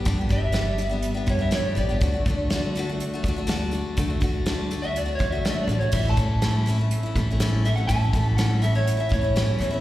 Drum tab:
CC |--------|--------|--------|x-------|
HH |xxxxxxxx|xxxxxxxx|xxxxxxxx|-xxxxxxx|
SD |--o---o-|--o---o-|--o---o-|--o---o-|
BD |oo---o--|oo---o--|oo---o--|oo---o--|

CC |--------|
HH |xxxxxxxx|
SD |--o---o-|
BD |oo---o--|